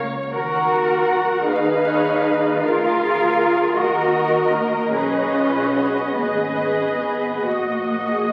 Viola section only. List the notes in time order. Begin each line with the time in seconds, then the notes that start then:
0.32 A#4
1.48 G#4 B4
2.64 G#4 A#4
3.77 F#4 A#4
4.92 G#4 B4
6.14 G#4 B4
7.42 F#4 D#5
8.09 G#4